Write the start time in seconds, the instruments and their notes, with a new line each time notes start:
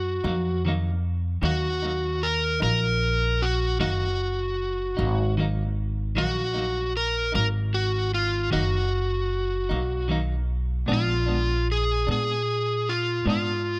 Already playing: upright bass F#2, electric slide guitar F#4
0.24 upright bass F2, clean electric guitar F#3 A#3 D#4
0.65 clean electric guitar D#3 F#3 A#3 D#4
1.42 upright bass D#2, clean electric guitar D#3 F#3 A#3 D#4, electric slide guitar F#4
1.82 clean electric guitar F#3 A#3 D#4
2.23 electric slide guitar A#4
2.60 upright bass A#1, clean electric guitar F#3 A#3 D#4, electric slide guitar A#4
3.42 electric slide guitar F#4
3.79 upright bass F#1, clean electric guitar D#3 F#3 A#3 D#4, electric slide guitar F#4
4.97 upright bass G#1, clean electric guitar F#3 A#3 D#4
5.37 clean electric guitar D#3 F#3 A#3 D#4
6.15 upright bass A#1, clean electric guitar D#3 F#3 A#3 D#4, electric slide guitar F#4
6.54 clean electric guitar F#3 A#3 D#4
6.97 electric slide guitar A#4
7.32 upright bass G#1, clean electric guitar F#3 A#3 D#4, electric slide guitar A#4
7.74 electric slide guitar F#4
8.14 electric slide guitar F4
8.51 upright bass F#1, clean electric guitar D#3 F#3 A#3 D#4, electric slide guitar F#4
9.69 upright bass B1, clean electric guitar F#3 A#3 D#4
10.08 clean electric guitar D#3 F#3 A#3 D#4
10.86 upright bass A#1, clean electric guitar A#2 G#3 B3 D4
10.93 electric slide guitar F4
11.26 clean electric guitar G#3 B3 D4
11.72 electric slide guitar G#4
12.07 upright bass A#2, clean electric guitar G#3 B3 D4
12.12 electric slide guitar G#4
12.89 electric slide guitar F4
13.25 upright bass G#2, clean electric guitar A#2 G#3 B3 D4
13.30 electric slide guitar F4